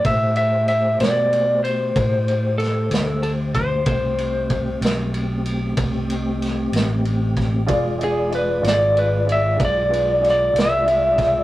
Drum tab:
RD |xxxxxxxxxxxx|xxxxxxxxxxxx|xxxxxxxxxxxx|
SD |---o----oo--|---o----oo-o|---o----oo-o|
BD |o-----o----o|o-o---o----o|o-----o----o|